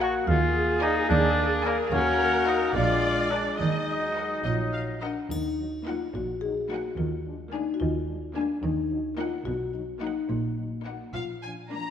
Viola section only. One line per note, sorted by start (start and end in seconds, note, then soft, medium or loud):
0.00 0.24 F#4 medium
0.28 1.89 G#4 medium
1.92 2.75 A#4 medium
2.75 3.58 D5 medium
3.59 4.38 D#5 medium
4.45 4.53 D#5 medium
4.74 4.82 F5 medium
5.02 5.10 D#5 soft
5.87 6.07 A#3 medium
6.71 6.91 A#3 medium
7.53 7.73 A#3 medium
8.35 8.56 A#3 medium
9.17 9.38 A#3 medium
10.01 10.22 A#3 medium
10.85 11.07 A#3 soft
11.72 11.90 A#3 soft